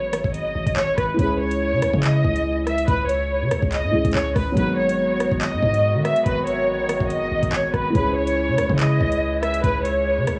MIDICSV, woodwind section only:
0, 0, Header, 1, 2, 480
1, 0, Start_track
1, 0, Tempo, 422535
1, 1351, Time_signature, 4, 2, 24, 8
1, 11804, End_track
2, 0, Start_track
2, 0, Title_t, "Woodwind section"
2, 0, Program_c, 0, 71
2, 5192, Note_on_c, 0, 51, 78
2, 5192, Note_on_c, 0, 56, 71
2, 5192, Note_on_c, 0, 59, 70
2, 5192, Note_on_c, 0, 66, 87
2, 8992, Note_off_c, 0, 51, 0
2, 8993, Note_off_c, 0, 56, 0
2, 8993, Note_off_c, 0, 59, 0
2, 8993, Note_off_c, 0, 66, 0
2, 9031, Note_on_c, 0, 49, 79
2, 9031, Note_on_c, 0, 52, 73
2, 9031, Note_on_c, 0, 56, 70
2, 9031, Note_on_c, 0, 64, 85
2, 11804, Note_off_c, 0, 49, 0
2, 11804, Note_off_c, 0, 52, 0
2, 11804, Note_off_c, 0, 56, 0
2, 11804, Note_off_c, 0, 64, 0
2, 11804, End_track
0, 0, End_of_file